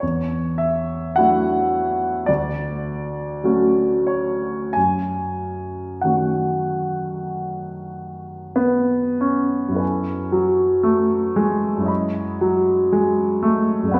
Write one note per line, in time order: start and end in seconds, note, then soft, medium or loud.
0.00 1.14 E2 soft
0.00 0.59 C#5 soft
0.58 1.16 E5 medium
1.16 2.24 F#3 soft
1.16 2.24 A3 soft
1.16 2.25 D4 soft
1.16 2.25 E4 soft
1.16 2.27 F#5 medium
2.26 3.40 D2 soft
2.26 4.06 D5 medium
3.44 4.72 F#3 soft
3.44 4.72 A3 soft
3.44 4.72 C#4 soft
3.44 4.72 F#4 soft
4.07 4.75 C#5 medium
4.73 6.00 F#2 soft
4.73 6.02 G#5 medium
6.01 9.78 D#3 soft
6.01 9.79 A3 soft
6.01 9.19 C#4 soft
6.01 9.79 F#4 soft
6.01 9.22 F#5 soft
8.56 9.22 B3 medium
9.21 10.32 C#4 soft
9.68 11.75 F#2 soft
9.68 11.79 E4 soft
9.74 11.81 A4 soft
9.74 11.83 B4 soft
9.79 11.84 G#5 soft
10.32 10.84 F#3 medium
10.83 11.36 A3 medium
11.36 12.41 G#3 medium
11.77 13.81 F#2 soft
11.77 13.85 E4 soft
11.83 13.86 C#5 soft
11.83 13.88 D#5 soft
11.88 13.89 B5 soft
12.41 12.92 F#3 medium
12.92 13.43 G#3 medium
13.43 13.93 A3 medium
13.83 14.00 F#2 soft
13.83 14.00 G#4 soft
13.88 14.00 D5 soft
13.88 14.00 F#5 soft
13.94 14.00 B3 medium
13.94 14.00 B5 soft